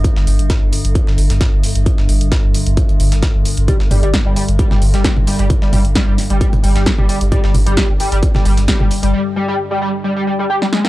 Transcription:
<<
  \new Staff \with { instrumentName = "Analog synth lead" } { \clef bass \time 4/4 \key c \minor \tempo 4 = 132 r1 | r1 | g16 r16 g16 g16 r16 g16 g16 r16 g16 g16 r16 g16 g16 r16 g16 g16 | r16 g16 g16 r16 g16 g16 r16 g16 g16 r16 g16 g16 r16 g16 g16 r16 |
g16 g16 r16 g16 g16 r16 g16 g16 r16 g16 g16 r16 g16 g16 r16 g16 | g16 r16 g16 g16 r16 g16 g16 r16 g16 g16 g16 g16 g'16 g16 aes16 bes16 | }
  \new Staff \with { instrumentName = "Synth drone" } { \clef bass \time 4/4 \key c \minor <g, d>1~ | <g, d>1~ | <g, d>1~ | <g, d>1~ |
<g, d>1 | r1 | }
  \new Staff \with { instrumentName = "Sub bass" } { \clef bass \time 4/4 \key c \minor r16 g,,16 g,,16 g,,16 r16 g,,16 r16 g,,16 r16 g,,16 g,,16 g,,16 r16 g,,16 r16 g,,16 | r16 g,,16 g,,16 g,,16 r16 g,,16 r16 g,,16 r16 g,,16 g,,16 g,,16 r16 g,,16 r16 g,,16 | r16 g,,16 g,,16 g,,16 r16 g,,16 r16 g,,16 r16 g,,16 g,,16 g,,16 r16 g,,16 r16 g,,16 | r16 g,,16 g,,16 g,,16 r16 g,,16 r16 g,,16 r16 g,,16 g,,16 g,,16 r16 g,,16 r16 g,,16 |
r16 g,,16 g,,16 g,,16 r16 g,,16 r16 g,,16 r16 g,,16 g,,16 g,,16 r16 g,,16 r16 g,,16 | r1 | }
  \new DrumStaff \with { instrumentName = "Drums" } \drummode { \time 4/4 <hh bd>16 sn16 <hh hho>16 hh16 <hh bd sn>8 <hh hho>16 hh16 <hh bd>16 sn16 <hh hho>16 <hh sn>16 <hh bd sn>8 hho16 hh16 | <hh bd>16 sn16 <hh hho>16 hh16 <hh bd sn>8 <hh hho>16 hh16 <hh bd>16 hh16 <hh hho>16 <hh sn>16 <hh bd sn>8 <hh hho>16 hh16 | <hh bd toml>16 sn16 <hh hho toml>16 hh16 <hh bd sn>8 <hh hho>16 hh16 <hh bd>16 <sn toml>16 <hh hho>16 <hh sn>16 <hh bd sn>16 toml16 hho16 hh16 | <hh bd toml>16 sn16 <hh hho toml>16 hh16 <hh bd sn>8 <hh hho sn>16 hh16 <hh bd>16 <hh toml>16 <hh hho>16 <hh sn>16 <hh bd sn>16 toml16 <hh hho>16 hh16 |
<hh bd toml>16 sn16 <hh hho toml>16 hh16 <hh bd sn>8 <hh hho>16 hh16 <hh bd>16 <sn toml>16 <hh hho>16 <hh sn>16 <hh bd sn>16 toml16 hho16 hh16 | r4 r4 r4 r16 sn16 sn16 sn16 | }
>>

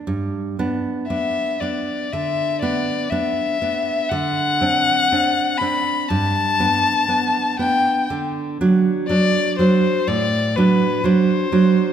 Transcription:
<<
  \new Staff \with { instrumentName = "Violin" } { \time 4/4 \key g \major \tempo 4 = 60 r4 e''8 d''8 e''8 d''8 e''4 | fis''4. b''8 a''4. g''8 | r4 d''8 c''8 d''8 b'8 c''4 | }
  \new Staff \with { instrumentName = "Nylon-string guitar" } { \time 4/4 \key g \major g,8 <b d'>8 <b d'>8 <b d'>8 d8 <b d'>8 <b d'>8 <b d'>8 | d8 <c' d'>8 <c' d'>8 <c' d'>8 g,8 <b d'>8 <b d'>8 <b d'>8 | d8 <fis d'>8 <fis d'>8 <fis d'>8 a,8 <fis d'>8 <fis d'>8 <fis d'>8 | }
>>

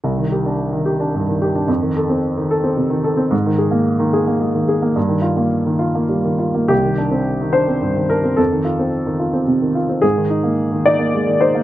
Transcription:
<<
  \new Staff \with { instrumentName = "Grand piano" } { \time 3/4 \key c \minor \tempo 4 = 109 r2. | r2. | r2. | r2. |
g'4. c''4 bes'8 | a'2~ a'8 r8 | aes'4. d''4 c''8 | }
  \new Staff \with { instrumentName = "Grand piano" } { \time 3/4 \key c \minor c,16 ees16 g'16 d'8 ees16 g'16 d'16 g,16 ees16 g'16 d'16 | f,16 ees16 a'16 c'8 ees16 a'16 c'16 c16 ees16 a'16 c'16 | aes,16 ees16 aes'16 bes8 ees16 aes'16 bes16 aes16 ees16 aes'16 bes16 | g,16 ees16 f'16 bes8 ees16 f'16 bes16 g16 ees16 f'16 bes16 |
c,16 ees16 d'16 c'8 ees16 d'16 c'16 g,16 ees16 d'16 c'16 | f,16 ees16 f'16 c'8 ees16 f'16 c'16 c16 ees16 f'16 c'16 | aes,16 ees16 ees'16 bes8 ees16 ees'16 bes16 aes16 ees16 ees'16 bes16 | }
>>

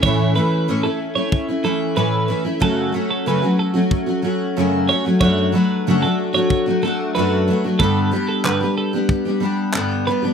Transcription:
<<
  \new Staff \with { instrumentName = "Clean electric guitar" } { \time 4/4 \key a \major \tempo 4 = 93 cis''8 b'8 r16 a'16 r16 cis''8 r16 a'16 r16 b'8. r16 | a'8 r16 a'16 b'8 a'16 r4. r16 cis''16 r16 | cis''8 b'8 r16 a'16 r16 cis''8 r16 a'16 r16 b'8. r16 | a'8 r16 a'16 b'8 a'16 r4. r16 b'16 r16 | }
  \new Staff \with { instrumentName = "Steel-string acoustic guitar" } { \time 4/4 \key a \major <a, e a cis' e'>8 <e a cis' e'>8 <a, e a cis' e'>16 <a cis' e'>8 <a cis' e'>8 <a cis' e'>16 <e a cis' e'>8 <a, e a cis' e'>8 <e a cis' e'>16 <a cis' e'>16 | <fis, cis fis a cis' fis'>8 <fis a cis' fis'>8 <fis, cis fis a cis' fis'>16 <fis a cis' fis'>8 <fis a cis' fis'>8 <fis a cis' fis'>16 <fis a cis' fis'>8 <fis, cis fis a cis' fis'>8 <fis a cis' fis'>16 <fis a cis' fis'>16 | <fis, fis a d' fis'>8 <fis a d' fis'>8 <fis, cis fis a d' fis'>16 <fis a d' fis'>8 <fis a d' fis'>8 <fis a d' fis'>16 <fis a d' fis'>8 <fis, fis a d' fis'>8 <fis a d' fis'>16 <fis a d' fis'>16 | <g, d g b d' g'>8 <g b d' g'>8 <g, d g b d' g'>16 <g b d' g'>8 <g b d' g'>8 <g b d' g'>16 <g b d' g'>8 <g, d g b d' g'>8 <g b d' g'>16 <g b d' g'>16 | }
  \new DrumStaff \with { instrumentName = "Drums" } \drummode { \time 4/4 bd4 r4 bd4 r4 | bd4 r4 bd4 r4 | bd4 r4 bd4 r4 | bd4 hc4 bd4 hc4 | }
>>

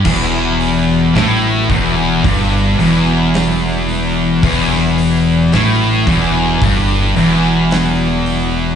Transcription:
<<
  \new Staff \with { instrumentName = "String machine" } { \time 4/4 \key e \minor \tempo 4 = 55 <e b fis'>1~ | <e b fis'>1 | }
  \new Staff \with { instrumentName = "Distorted electric guitar" } { \clef bass \time 4/4 \key e \minor e,4 a,8 e,8 g,8 e,4. | e,4 a,8 e,8 g,8 e,4. | }
  \new Staff \with { instrumentName = "Distorted electric guitar" } { \clef bass \time 4/4 \key e \minor e,4 a,8 e,8 g,8 e,4. | e,4 a,8 e,8 g,8 e,4. | }
  \new Staff \with { instrumentName = "Distorted electric guitar" } { \clef bass \time 4/4 \key e \minor e,4 a,8 e,8 g,8 e,4. | e,4 a,8 e,8 g,8 e,4. | }
  \new Staff \with { instrumentName = "Fingered electric bass" } { \clef bass \time 4/4 \key e \minor e,,4 a,,8 e,,8 g,,8 e,,4. | e,,4 a,,8 e,,8 g,,8 e,,4. | }
  \new DrumStaff \with { instrumentName = "Drums" } \drummode { \time 4/4 <cymc bd>8 hho8 <hho sn>8 <hho bd>8 <hho bd>8 hho8 <hho sn>8 hho8 | <hho bd>16 sn16 hho8 <hho sn>8 <hho bd>8 <hho bd>8 hho8 <hho sn>8 hho8 | }
>>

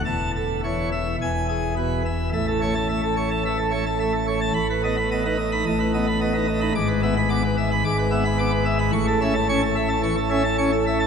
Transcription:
<<
  \new Staff \with { instrumentName = "Pipe organ" } { \time 4/4 \key a \major \tempo 4 = 109 a''8 a'8 cis''8 e''8 gis''8 gis'8 b'8 e''8 | e''16 a'16 cis''16 a''16 e''16 a'16 cis''16 a''16 e''16 a'16 cis''16 a''16 e''16 a'16 cis''16 a''16 | b''16 b'16 dis''16 b''16 dis''16 b'16 dis''16 b''16 dis''16 b'16 dis''16 b''16 dis''16 b'16 dis''16 b''16 | d'''16 b'16 e''16 b''16 d'''16 b'16 e''16 b''16 d'''16 b'16 e''16 b''16 d'''16 b'16 e''16 b''16 |
cis'''16 a'16 e''16 a''16 cis'''16 a'16 e''16 a''16 cis'''16 a'16 e''16 a''16 cis'''16 a'16 e''16 a''16 | }
  \new Staff \with { instrumentName = "Pipe organ" } { \clef bass \time 4/4 \key a \major << { e,4 e8 r8 e,4 b,8 r8 | a,8 a16 r16 a16 r8. e16 r16 a16 r16 a16 r8. | a,8 b16 r16 b16 dis'16 r16 dis'16 a,8 b16 r16 b16 dis'16 r16 dis'16 | gis,8 b16 r16 b16 r8. gis,8 b16 r16 b16 r8. |
a,8 cis'16 r16 cis'16 r8. e16 r16 cis'16 r16 cis'16 r8. | } \\ { e,,2 e,,2 | a,,1 | a,,2 a,,2 | gis,,2 gis,,2 |
a,,1 | } >> }
>>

